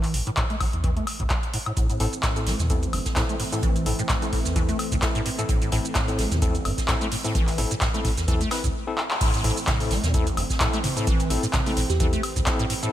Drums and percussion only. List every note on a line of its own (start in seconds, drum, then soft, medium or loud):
0.03 clap soft
0.03 open hi-hat medium
0.14 open hi-hat loud
0.27 closed hi-hat soft
0.37 kick loud
0.37 clap loud
0.37 closed hi-hat medium
0.50 closed hi-hat soft
0.61 kick medium
0.61 open hi-hat loud
0.61 high woodblock medium
0.73 closed hi-hat soft
0.84 kick loud
0.84 closed hi-hat medium
0.97 closed hi-hat soft
1.07 open hi-hat loud
1.07 high woodblock medium
1.20 kick medium
1.20 closed hi-hat soft
1.30 kick loud
1.30 clap loud
1.30 closed hi-hat medium
1.43 closed hi-hat soft
1.54 open hi-hat loud
1.66 closed hi-hat soft
1.66 high woodblock medium
1.77 kick loud
1.77 closed hi-hat medium
1.77 shaker medium
1.90 closed hi-hat soft
1.90 shaker soft
2.00 closed hi-hat medium
2.00 open hi-hat loud
2.13 closed hi-hat soft
2.13 shaker medium
2.23 kick loud
2.23 snare loud
2.23 clap loud
2.23 closed hi-hat medium
2.23 shaker medium
2.36 closed hi-hat soft
2.36 shaker soft
2.46 snare soft
2.46 closed hi-hat medium
2.46 open hi-hat medium
2.59 snare soft
2.59 closed hi-hat soft
2.59 shaker medium
2.69 kick loud
2.69 closed hi-hat medium
2.69 shaker soft
2.83 closed hi-hat soft
2.83 shaker soft
2.93 closed hi-hat medium
2.93 open hi-hat loud
2.93 high woodblock medium
3.05 kick medium
3.05 snare soft
3.05 closed hi-hat soft
3.05 shaker medium
3.16 kick loud
3.16 snare loud
3.16 clap loud
3.16 closed hi-hat medium
3.16 shaker medium
3.29 closed hi-hat soft
3.29 shaker soft
3.39 open hi-hat medium
3.39 open hi-hat loud
3.52 closed hi-hat soft
3.52 shaker medium
3.63 kick loud
3.63 closed hi-hat medium
3.63 shaker medium
3.76 closed hi-hat soft
3.76 shaker soft
3.86 closed hi-hat medium
3.86 open hi-hat loud
3.99 closed hi-hat soft
3.99 shaker medium
4.09 kick loud
4.09 snare loud
4.09 clap loud
4.09 closed hi-hat medium
4.09 shaker medium
4.22 closed hi-hat soft
4.22 shaker soft
4.33 kick medium
4.33 closed hi-hat medium
4.33 open hi-hat medium
4.45 snare soft
4.45 closed hi-hat soft
4.45 shaker medium
4.56 kick loud
4.56 closed hi-hat medium
4.56 shaker medium
4.69 closed hi-hat soft
4.69 shaker soft
4.79 closed hi-hat medium
4.79 open hi-hat loud
4.79 high woodblock medium
4.92 kick medium
4.92 closed hi-hat soft
4.92 shaker medium
5.02 kick loud
5.02 snare loud
5.02 clap loud
5.02 closed hi-hat medium
5.02 shaker medium
5.15 closed hi-hat soft
5.15 shaker soft
5.26 closed hi-hat medium
5.26 open hi-hat loud
5.39 closed hi-hat soft
5.39 shaker medium
5.49 kick loud
5.49 closed hi-hat medium
5.49 shaker medium
5.62 closed hi-hat soft
5.62 shaker soft
5.71 closed hi-hat medium
5.71 open hi-hat loud
5.85 closed hi-hat soft
5.85 shaker medium
5.95 kick loud
5.95 snare loud
5.95 clap loud
5.95 closed hi-hat medium
5.95 shaker medium
6.08 closed hi-hat soft
6.08 shaker soft
6.18 snare soft
6.18 closed hi-hat medium
6.18 open hi-hat medium
6.32 snare soft
6.32 closed hi-hat soft
6.32 shaker medium
6.42 kick loud
6.42 closed hi-hat medium
6.42 shaker medium
6.55 closed hi-hat soft
6.55 shaker soft
6.65 closed hi-hat medium
6.65 open hi-hat medium
6.65 high woodblock medium
6.78 kick medium
6.78 snare soft
6.78 closed hi-hat soft
6.78 shaker medium
6.88 kick loud
6.88 snare loud
6.88 clap loud
6.88 closed hi-hat medium
6.88 shaker medium
7.01 closed hi-hat soft
7.01 shaker soft
7.12 open hi-hat medium
7.12 open hi-hat loud
7.25 closed hi-hat soft
7.25 shaker medium
7.35 kick loud
7.35 closed hi-hat medium
7.35 shaker medium
7.47 clap soft
7.47 closed hi-hat soft
7.47 open hi-hat medium
7.47 shaker soft
7.58 closed hi-hat medium
7.58 open hi-hat loud
7.71 closed hi-hat soft
7.71 shaker medium
7.81 kick loud
7.81 snare loud
7.81 clap loud
7.81 closed hi-hat medium
7.81 shaker medium
7.94 closed hi-hat soft
7.94 shaker soft
8.05 kick medium
8.05 closed hi-hat medium
8.05 open hi-hat loud
8.17 snare soft
8.17 closed hi-hat soft
8.17 shaker medium
8.28 kick loud
8.28 closed hi-hat medium
8.28 shaker medium
8.41 closed hi-hat soft
8.41 shaker soft
8.51 snare medium
8.51 closed hi-hat medium
8.51 open hi-hat loud
8.51 high woodblock medium
8.64 kick medium
8.64 closed hi-hat soft
8.64 shaker medium
8.98 clap medium
9.11 clap medium
9.21 kick loud
9.21 closed hi-hat medium
9.21 crash loud
9.21 shaker medium
9.34 closed hi-hat medium
9.34 closed hi-hat soft
9.34 shaker soft
9.44 closed hi-hat medium
9.44 open hi-hat loud
9.57 shaker medium
9.67 kick loud
9.67 snare loud
9.67 clap loud
9.67 closed hi-hat medium
9.67 mid tom medium
9.67 shaker medium
9.80 closed hi-hat soft
9.80 open hi-hat medium
9.80 shaker soft
9.91 snare soft
9.91 closed hi-hat medium
9.91 open hi-hat loud
10.04 snare medium
10.04 closed hi-hat soft
10.04 shaker medium
10.14 kick loud
10.14 closed hi-hat medium
10.14 shaker medium
10.27 closed hi-hat medium
10.27 shaker soft
10.37 closed hi-hat medium
10.37 open hi-hat loud
10.37 high woodblock medium
10.50 kick medium
10.50 snare soft
10.50 shaker medium
10.60 kick loud
10.60 snare loud
10.60 clap loud
10.60 closed hi-hat medium
10.60 shaker medium
10.73 closed hi-hat medium
10.73 shaker soft
10.84 open hi-hat loud
10.84 open hi-hat medium
10.84 mid tom medium
10.97 closed hi-hat soft
10.97 shaker medium
11.07 kick loud
11.07 closed hi-hat medium
11.07 shaker medium
11.20 closed hi-hat medium
11.20 closed hi-hat soft
11.20 shaker soft
11.30 closed hi-hat medium
11.30 open hi-hat loud
11.43 shaker medium
11.53 kick loud
11.53 snare loud
11.53 clap loud
11.53 closed hi-hat medium
11.53 mid tom loud
11.53 shaker medium
11.66 closed hi-hat soft
11.66 open hi-hat medium
11.66 shaker soft
11.76 closed hi-hat medium
11.76 open hi-hat loud
11.90 snare soft
11.90 closed hi-hat soft
11.90 shaker medium
12.00 kick loud
12.00 closed hi-hat medium
12.00 shaker medium
12.13 closed hi-hat medium
12.13 closed hi-hat soft
12.13 shaker soft
12.23 closed hi-hat medium
12.23 open hi-hat loud
12.23 high woodblock medium
12.36 kick medium
12.36 shaker medium
12.46 kick loud
12.46 snare loud
12.46 clap loud
12.46 closed hi-hat medium
12.46 shaker medium
12.59 closed hi-hat medium
12.59 shaker soft
12.70 closed hi-hat medium
12.70 open hi-hat loud
12.83 closed hi-hat soft
12.83 shaker medium